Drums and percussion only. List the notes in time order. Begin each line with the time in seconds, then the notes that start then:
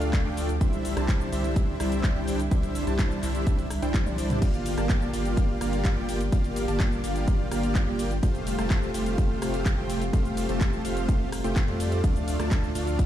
0.02 closed hi-hat, shaker
0.13 kick, clap, closed hi-hat, shaker
0.37 open hi-hat, shaker
0.49 closed hi-hat, shaker
0.61 kick, closed hi-hat, shaker
0.73 closed hi-hat, shaker
0.85 open hi-hat, shaker
0.97 cross-stick, closed hi-hat, shaker
1.09 kick, clap, closed hi-hat, shaker
1.21 shaker
1.32 open hi-hat, shaker
1.44 closed hi-hat, shaker
1.56 kick, closed hi-hat, shaker
1.80 cross-stick, open hi-hat, shaker
1.92 closed hi-hat, shaker
2.04 kick, clap, closed hi-hat, shaker
2.28 open hi-hat, shaker
2.39 closed hi-hat, shaker
2.51 kick, closed hi-hat, shaker
2.63 closed hi-hat, shaker
2.75 open hi-hat, shaker
2.87 closed hi-hat, shaker
2.99 kick, clap, closed hi-hat, shaker
3.11 shaker
3.23 clap, open hi-hat, shaker
3.35 closed hi-hat, shaker
3.47 kick, closed hi-hat, shaker
3.59 closed hi-hat, shaker
3.70 cross-stick, open hi-hat, shaker
3.82 closed hi-hat, shaker
3.94 kick, clap, closed hi-hat, high tom, shaker
4.06 high tom, shaker
4.18 open hi-hat, shaker
4.30 closed hi-hat, mid tom, shaker
4.42 kick, closed hi-hat, crash, ride, shaker
4.54 closed hi-hat, shaker
4.66 open hi-hat, ride, shaker
4.78 cross-stick, closed hi-hat, shaker
4.89 kick, clap, closed hi-hat, ride, shaker
5.02 shaker
5.13 open hi-hat, ride, shaker
5.25 closed hi-hat, shaker
5.37 kick, closed hi-hat, ride, shaker
5.61 cross-stick, open hi-hat, ride, shaker
5.73 closed hi-hat, shaker
5.85 kick, clap, closed hi-hat, ride, shaker
6.09 open hi-hat, ride, shaker
6.21 closed hi-hat, shaker
6.32 kick, closed hi-hat, ride, shaker
6.44 closed hi-hat, shaker
6.56 open hi-hat, ride, shaker
6.68 closed hi-hat, shaker
6.80 kick, clap, closed hi-hat, ride, shaker
6.92 shaker
7.04 open hi-hat, ride, shaker
7.16 closed hi-hat, shaker
7.28 kick, closed hi-hat, ride, shaker
7.51 cross-stick, open hi-hat, ride, shaker
7.63 closed hi-hat, shaker
7.75 kick, clap, closed hi-hat, ride, shaker
7.99 open hi-hat, ride, shaker
8.11 closed hi-hat, shaker
8.23 kick, closed hi-hat, ride, shaker
8.35 closed hi-hat, shaker
8.47 open hi-hat, ride, shaker
8.59 cross-stick, closed hi-hat, shaker
8.70 kick, clap, closed hi-hat, ride, shaker
8.83 shaker
8.94 open hi-hat, ride, shaker
9.06 closed hi-hat, shaker
9.18 kick, closed hi-hat, ride, shaker
9.42 cross-stick, open hi-hat, ride, shaker
9.54 closed hi-hat, shaker
9.66 kick, clap, closed hi-hat, ride, shaker
9.90 open hi-hat, ride, shaker
10.02 closed hi-hat, shaker
10.13 kick, closed hi-hat, ride, shaker
10.25 closed hi-hat, shaker
10.37 open hi-hat, ride, shaker
10.49 closed hi-hat, shaker
10.61 kick, clap, closed hi-hat, ride, shaker
10.73 shaker
10.85 open hi-hat, ride, shaker
10.97 closed hi-hat, shaker
11.09 kick, closed hi-hat, ride, shaker
11.32 cross-stick, open hi-hat, ride, shaker
11.44 closed hi-hat, shaker
11.56 kick, clap, closed hi-hat, ride, shaker
11.68 closed hi-hat
11.80 open hi-hat, ride, shaker
11.92 closed hi-hat, shaker
12.04 kick, closed hi-hat, ride, shaker
12.16 closed hi-hat, shaker
12.28 open hi-hat, ride, shaker
12.40 cross-stick, closed hi-hat, shaker
12.51 kick, clap, closed hi-hat, ride, shaker
12.64 shaker
12.75 open hi-hat, ride, shaker
12.87 closed hi-hat, shaker
12.99 kick, closed hi-hat, ride, shaker